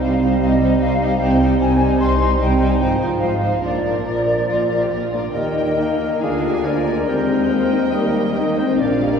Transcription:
Already playing: bassoon G3, clarinet D#4
0.01 double bass section C2, cello section C3, viola section G3, violin section D#4 C5, flute section F5
0.20 viola section G3, violin section D#4 C5
0.41 double bass section C2, cello section C3, viola section G3, violin section D#4 C5, flute section D#5
0.60 viola section G3, violin section D#4 C5
0.79 double bass section C2, cello section C3, viola section G3, violin section D#4 C5, flute section F5
1.00 viola section G3, violin section D#4 C5
1.20 double bass section C2, cello section C3, viola section G3, violin section D#4 C5, flute section G5
1.40 viola section G3, violin section D#4 C5
1.59 double bass section C2, cello section C3, viola section G3, violin section D#4 C5, flute section G#5
1.79 viola section G3, violin section D#4 C5
1.99 double bass section C2, cello section C3, bassoon G3, viola section G3, violin section D#4 C5, clarinet D#4, flute section C6
2.19 viola section G3, violin section D#4 C5
2.39 double bass section C2, cello section C3, viola section G3, violin section D#4 C5, flute section G5
2.59 viola section G3, violin section D#4 C5
2.70 flute section G#5
2.79 double bass section G#1, cello section G#2, viola section F3, bassoon F3, violin section D#4 C5, flute section G5
2.99 viola section F3, violin section D#4 C5
3.20 double bass section G#1, cello section G#2, viola section F3, violin section D#4 C5, flute section F5
3.41 viola section F3, violin section D#4 C5
3.62 double bass section A#1, cello section A#2, viola section F3, violin section D4 A#4, clarinet F4, flute section D5
3.84 viola section F3, violin section D4 A#4
4.05 double bass section A#1, cello section A#2, viola section F3, violin section A#4
4.27 viola section F3, violin section A#4
4.48 double bass section A#1, cello section A#2, viola section F3, violin section F4 A#4
4.70 viola section F3, violin section A#4
4.81 violin section G4
4.91 double bass section A#1, cello section A#2, viola section F3, violin section F4 A#4
5.12 viola section F3 A#3, french horn section D4, violin section A#4, flute section D5, clarinet D5
5.33 double bass section D#2, cello section D#3, bassoon G3, viola section A#3, french horn section D#4, oboe A#4, violin section A#4 G5, flute section D#5, clarinet D#5
5.79 bassoon A#3
6.21 double bass section D2, cello section D3, bassoon G#3, viola section D4, french horn section F4, oboe G#4, flute section F5, clarinet F5, violin section G#5
6.44 bassoon G3
6.65 bassoon F3, viola section A#3, french horn section D4, oboe A#4, flute section D5, clarinet D5
6.87 bassoon G#3
7.07 double bass section D#2, cello section D#3, bassoon G3, viola section G#3, french horn section C4, oboe A#4, clarinet C5, flute section C5, violin section D#5 G5
7.52 bassoon F3
7.73 bassoon D#3
7.93 bassoon G3, viola section G3, french horn section A#3, clarinet A#4, flute section A#4, oboe D#5
8.16 bassoon G3
8.36 bassoon D#3, viola section A#3, french horn section D#4, clarinet D#5, flute section D#5
8.57 viola section G#3, french horn section C4, clarinet C5, flute section C5
8.79 double bass section A#1, cello section A#2, bassoon F3, viola section A#3, french horn section D4, violin section A#4 F5, clarinet D5, oboe D5, flute section D5
9.02 bassoon G3

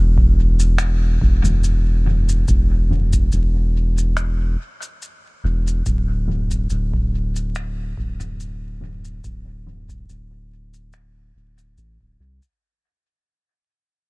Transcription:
Already playing: sub bass E1
0.18 kick
0.60 shaker
0.78 finger snap, shaker
1.21 sub bass E1, kick
1.44 mid tom, shaker
1.64 shaker
2.06 mid tom
2.29 shaker
2.48 sub bass E1, kick, shaker
2.91 mid tom
3.13 kick, shaker
3.32 sub bass E1, shaker
3.98 shaker
4.17 finger snap, shaker
4.82 shaker
5.02 shaker
5.44 sub bass E1
5.67 shaker
5.86 sub bass D1, kick, shaker
6.28 mid tom
6.51 kick, shaker
6.70 sub bass D1, shaker
6.94 kick
7.36 shaker
7.55 finger snap, shaker
7.97 sub bass D1, kick
8.20 mid tom, shaker
8.40 shaker
8.81 mid tom
9.05 shaker
9.24 sub bass D1, kick, shaker
9.67 mid tom
9.89 kick, shaker
10.09 sub bass D1, shaker
10.74 shaker
10.93 finger snap, shaker
11.35 sub bass D1
11.58 shaker
11.78 sub bass A1, shaker
12.01 sub bass D1, kick
12.20 sub bass C2
12.42 shaker

